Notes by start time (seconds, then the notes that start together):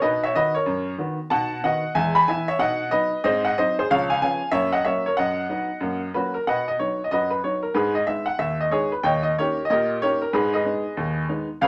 0.02 B2 D#4 B4 D#5
0.23 C#5 E5
0.35 D#3 B3 F#4 B4 D#5
0.55 A#4 C#5
0.66 F#2
0.98 D#3 B3 F#4
1.30 B2 D#4 F#5 A5
1.64 D#3 B3 F#4 D#5 F#5
1.95 E2 G#3 E5 G#5
2.15 G#5 B5
2.28 E3 B3 E4 E5 G#5
2.48 C#5 E5
2.59 B2 D#4 D#5 F#5
2.91 F#3 B3 D#4 B4 D#5
3.24 G#2 C4 C5 D#5
3.45 D#5 F#5
3.58 F#3 C4 D#4 C5 D#5
3.79 G#4 C5
3.90 C#2 F3 C#5 F5
4.10 F5 G#5
4.22 F3 B3 C#4 F5 G#5
4.52 F#2 A#3 C#5 E5
4.72 D#5 F#5
4.85 F#3 A#3 C#4 C#5 E5
5.06 A#4 C#5
5.17 F#2 D#5 F#5
5.49 F#3 B3 D#4
5.80 F#2 A#3
6.14 F#3 A#3 C#4 F#4 B4
6.34 A#4
6.47 B2 B4 D#5 F#5
6.68 D#5
6.79 F#3 B3 D#4 C#5
7.04 D#5
7.11 F#2 F#4 B4 D#5
7.30 B4
7.43 F#3 B3 D#4 C#5
7.63 A#4
7.74 G#2 D#4 G#4 B4
7.95 D#5
8.07 G#3 B3 D#4 E5
8.26 F#5
8.38 D#2 E5
8.60 D#5
8.70 G#3 B3 D#4 G#4 C#5
8.92 B4
9.03 D#2 C#5 D#5 G5
9.23 D#5
9.38 A#3 C#4 D#4 G4 A#4 C#5
9.65 D#5
9.70 A#2 G4 A#4 D#5
10.02 A#3 C#4 D#4 G4 A#4 C#5
10.22 A#4
10.33 G#2 D#4 G#4 B4
10.53 G#4 B4 D#5
10.64 G#3 B3 D#4
10.97 D#2
11.29 G#3 B3 D#4
11.61 C#2 B4 C#5 F5